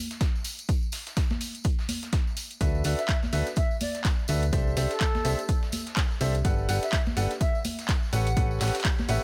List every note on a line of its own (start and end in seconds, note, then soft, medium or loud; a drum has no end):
0.11 snare soft
0.11 closed hi-hat soft
0.11 tambourine soft
0.21 kick loud
0.21 snare loud
0.21 closed hi-hat medium
0.21 tambourine soft
0.35 tambourine soft
0.44 closed hi-hat medium
0.44 open hi-hat medium
0.44 tambourine loud
0.58 closed hi-hat medium
0.58 tambourine soft
0.69 kick loud
0.69 closed hi-hat medium
0.69 tambourine medium
0.83 tambourine soft
0.92 snare soft
0.92 closed hi-hat medium
0.92 open hi-hat loud
0.92 tambourine medium
1.06 snare soft
1.06 closed hi-hat soft
1.06 tambourine soft
1.17 kick loud
1.17 snare loud
1.17 closed hi-hat medium
1.17 tambourine medium
1.30 snare soft
1.30 tambourine soft
1.30 high conga medium
1.41 closed hi-hat medium
1.41 open hi-hat medium
1.41 tambourine medium
1.55 closed hi-hat soft
1.55 tambourine soft
1.64 kick loud
1.64 closed hi-hat medium
1.64 tambourine soft
1.79 snare soft
1.79 tambourine soft
1.89 closed hi-hat medium
1.89 open hi-hat loud
1.89 tambourine medium
1.89 high conga medium
2.03 snare soft
2.03 closed hi-hat soft
2.03 tambourine soft
2.12 kick loud
2.12 snare loud
2.12 closed hi-hat medium
2.12 tambourine soft
2.27 tambourine soft
2.37 closed hi-hat medium
2.37 open hi-hat medium
2.37 tambourine medium
2.50 closed hi-hat soft
2.50 tambourine soft
2.61 2.83 D2 medium
2.61 2.82 D4 medium
2.61 2.82 F#4 medium
2.61 2.82 A4 medium
2.61 2.82 B4 medium
2.61 2.82 E5 medium
2.61 kick loud
2.61 closed hi-hat medium
2.61 tambourine soft
2.75 tambourine soft
2.84 2.95 D2 medium
2.84 2.98 D4 medium
2.84 2.98 F#4 medium
2.84 2.98 A4 medium
2.84 2.98 B4 medium
2.84 2.98 E5 medium
2.84 open hi-hat loud
2.84 open hi-hat medium
2.84 tambourine medium
2.99 3.17 E5 medium
2.99 snare soft
2.99 closed hi-hat soft
2.99 tambourine soft
3.08 kick loud
3.08 snare loud
3.08 clap loud
3.08 closed hi-hat medium
3.08 tambourine soft
3.23 snare soft
3.23 tambourine soft
3.23 high conga medium
3.32 3.43 D2 medium
3.32 3.46 D4 medium
3.32 3.46 F#4 medium
3.32 3.46 A4 medium
3.32 3.46 B4 medium
3.32 3.46 E5 loud
3.32 closed hi-hat medium
3.32 open hi-hat medium
3.32 tambourine medium
3.46 snare soft
3.46 closed hi-hat soft
3.46 tambourine soft
3.56 3.77 E5 medium
3.56 kick loud
3.56 closed hi-hat medium
3.56 tambourine soft
3.71 tambourine soft
3.81 4.01 D5 medium
3.81 closed hi-hat medium
3.81 open hi-hat medium
3.81 tambourine medium
3.81 high conga medium
3.95 snare soft
3.95 closed hi-hat soft
3.95 tambourine soft
4.05 kick loud
4.05 snare loud
4.05 clap loud
4.05 closed hi-hat medium
4.05 tambourine soft
4.19 tambourine soft
4.28 4.51 D2 loud
4.28 4.42 D4 medium
4.28 4.42 F#4 medium
4.28 4.42 A4 medium
4.28 4.42 B4 medium
4.28 4.42 E5 loud
4.28 closed hi-hat medium
4.28 open hi-hat medium
4.28 tambourine medium
4.43 closed hi-hat soft
4.43 tambourine soft
4.53 4.75 C2 medium
4.53 4.74 D4 medium
4.53 4.74 G4 medium
4.53 4.74 A4 medium
4.53 4.74 C5 medium
4.53 4.74 E5 medium
4.53 kick loud
4.53 closed hi-hat medium
4.53 tambourine soft
4.67 tambourine soft
4.77 4.87 C2 loud
4.77 4.90 D4 medium
4.77 4.90 G4 medium
4.77 4.90 A4 medium
4.77 4.90 C5 medium
4.77 4.90 E5 medium
4.77 snare soft
4.77 closed hi-hat medium
4.77 open hi-hat medium
4.77 tambourine medium
4.91 5.57 A4 medium
4.91 snare soft
4.91 closed hi-hat medium
4.91 tambourine soft
5.01 kick loud
5.01 snare loud
5.01 clap loud
5.01 closed hi-hat medium
5.01 tambourine soft
5.15 snare medium
5.15 tambourine soft
5.15 high conga medium
5.25 5.35 C2 medium
5.25 5.38 D4 medium
5.25 5.38 G4 medium
5.25 5.38 A4 medium
5.25 5.38 C5 medium
5.25 5.38 E5 loud
5.25 closed hi-hat medium
5.25 open hi-hat medium
5.25 tambourine medium
5.39 closed hi-hat soft
5.39 tambourine soft
5.49 kick loud
5.49 closed hi-hat medium
5.49 tambourine soft
5.63 snare soft
5.63 tambourine soft
5.72 closed hi-hat medium
5.72 open hi-hat medium
5.72 tambourine medium
5.72 high conga medium
5.86 snare soft
5.86 closed hi-hat medium
5.86 tambourine soft
5.97 kick loud
5.97 snare loud
5.97 clap loud
5.97 closed hi-hat medium
5.97 tambourine soft
6.11 tambourine soft
6.21 6.43 C2 loud
6.21 6.34 D4 medium
6.21 6.34 G4 medium
6.21 6.34 A4 medium
6.21 6.34 C5 medium
6.21 6.34 E5 loud
6.21 closed hi-hat medium
6.21 open hi-hat medium
6.21 tambourine medium
6.35 closed hi-hat medium
6.35 tambourine soft
6.45 6.67 G1 medium
6.45 6.66 D4 medium
6.45 6.66 G4 medium
6.45 6.66 A4 medium
6.45 6.66 B4 medium
6.45 6.66 F#5 medium
6.45 kick loud
6.45 closed hi-hat medium
6.45 tambourine soft
6.58 tambourine soft
6.69 6.79 G1 medium
6.69 6.82 D4 medium
6.69 6.82 G4 medium
6.69 6.82 A4 medium
6.69 6.82 B4 medium
6.69 6.82 F#5 loud
6.69 open hi-hat medium
6.69 tambourine medium
6.83 7.01 E5 medium
6.83 snare soft
6.83 closed hi-hat medium
6.83 tambourine soft
6.93 kick loud
6.93 snare loud
6.93 clap loud
6.93 closed hi-hat medium
6.93 tambourine soft
7.06 snare soft
7.06 tambourine soft
7.06 high conga medium
7.17 7.27 G1 medium
7.17 7.30 D4 medium
7.17 7.30 G4 medium
7.17 7.30 A4 medium
7.17 7.30 B4 medium
7.17 7.30 F#5 loud
7.17 closed hi-hat medium
7.17 open hi-hat medium
7.17 tambourine medium
7.31 snare soft
7.31 closed hi-hat soft
7.31 tambourine soft
7.41 7.61 E5 medium
7.41 kick loud
7.41 closed hi-hat medium
7.41 tambourine medium
7.55 tambourine soft
7.64 closed hi-hat medium
7.64 open hi-hat loud
7.64 tambourine medium
7.64 high conga medium
7.79 snare soft
7.79 closed hi-hat medium
7.79 tambourine soft
7.88 kick loud
7.88 snare loud
7.88 clap loud
7.88 closed hi-hat medium
7.88 tambourine soft
8.03 tambourine soft
8.13 8.35 A1 loud
8.13 8.26 C#4 medium
8.13 8.26 G4 medium
8.13 8.26 A4 medium
8.13 8.26 B4 medium
8.13 8.26 F#5 loud
8.13 8.51 F#5 medium
8.13 closed hi-hat medium
8.13 open hi-hat medium
8.13 tambourine medium
8.27 closed hi-hat medium
8.27 tambourine soft
8.36 8.59 A1 medium
8.36 8.58 C#4 medium
8.36 8.58 G4 medium
8.36 8.58 A4 medium
8.36 8.58 B4 medium
8.36 8.58 F#5 medium
8.36 kick loud
8.36 closed hi-hat medium
8.36 tambourine soft
8.51 tambourine soft
8.61 8.71 A1 medium
8.61 8.74 C#4 medium
8.61 8.74 G4 medium
8.61 8.74 A4 medium
8.61 8.74 B4 medium
8.61 8.74 F#5 loud
8.61 snare medium
8.61 clap soft
8.61 closed hi-hat medium
8.61 open hi-hat loud
8.61 tambourine medium
8.68 snare medium
8.68 closed hi-hat medium
8.75 snare medium
8.75 closed hi-hat medium
8.75 tambourine soft
8.80 snare medium
8.80 closed hi-hat medium
8.85 kick loud
8.85 snare loud
8.85 clap loud
8.85 closed hi-hat medium
8.99 snare medium
8.99 tambourine soft
8.99 high conga medium
9.08 9.19 A1 medium
9.08 9.22 C#4 medium
9.08 9.22 G4 medium
9.08 9.22 A4 medium
9.08 9.22 B4 medium
9.08 9.23 E5 medium
9.08 9.22 F#5 loud
9.08 closed hi-hat medium
9.08 open hi-hat medium
9.08 tambourine medium